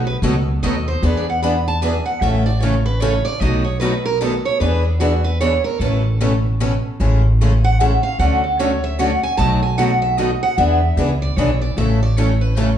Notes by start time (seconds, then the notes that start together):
Already playing: B1
0.07 B4
0.22 C#2 B2 D#3 F#3 A3 B3 D#4 F#4 A4
0.63 D#2 B2 D#3 F#3 A3 B3 D#4 F#4 A4 D#5
0.88 C5
1.02 E2 E3 B3 D4 G#4 B4
1.17 D5
1.30 F#5
1.43 E3 B3 D4 G#4 B4 B5
1.68 A5
1.82 E3 B3 D4 G#4 B4 G#5
2.06 F#5
2.21 A1 C#3 E3 A3 C#4 E4 A4 E5
2.46 D5
2.60 C#3 E3 A3 C#4 E4 A4 C#5
2.86 B4
3.00 C#3 E3 A3 C#4 E4 A4 C#5
3.25 D5
3.40 B1 B2 D#3 F#3 A3 B3 D#4 F#4 A4 D#5
3.64 C#5
3.80 B2 D#3 F#3 A3 B3 D#4 F#4 A4 B4
4.05 A#4
4.21 B2 D#3 F#3 A3 B3 D#4 F#4 A4
4.45 C#5
4.60 E2 E3 B3 D4 G#4 B4
4.85 D4
5.00 E3 B3 D4 F#4 G#4 B4
5.24 B4
5.41 E3 B3 D4 G#4 B4 C#5
5.64 A#4
5.80 A1 B2 E3 A3 C#4 E4 A4 B4
6.21 B2 E3 A3 C#4 E4 A4 B4
6.60 B2 E3 A3 C#4 E4 A4 B4
7.00 A1 C#3 E3 G#3 A3 C#4 E4 G#4 A4
7.41 C#3 E3 G#3 A3 C#4 E4 G#4 A4
7.64 F#5
7.80 C#3 E3 G#3 A3 C#4 E4 G#4 A4 E5
8.03 F5
8.19 D2 D3 F#3 A3 C#4 F#4 A4 F#5
8.44 A4
8.59 D3 F#3 A3 C#4 F#4 A4 C#5
8.84 E5
8.99 D3 F#3 A3 C#4 F#4 A4 F#5
9.23 G#5
9.37 B1 B2 D#3 F#3 A3 B3 D#4 F#4 A4 A5
9.63 G#5
9.78 B2 D#3 F#3 A3 B3 D#4 F#4 A4 F#5
10.02 E5
10.18 B2 D#3 F#3 A3 B3 D#4 F#4 A4 D#5
10.43 F#5
10.58 E2 E3 B3 D4 G#4 B4 E5
10.97 C#2 E3 B3 D4 G#4 B4
11.22 D5
11.37 B1 E3 B3 D4 G#4 B4 C#5
11.62 D5
11.77 A1 C#3 E3 A3 C#4 E4 A4 E5
12.03 D5
12.17 C#3 E3 A3 C#4 E4 A4 C#5
12.41 B4
12.57 C#3 E3 A3 C#4 E4 A4 C#5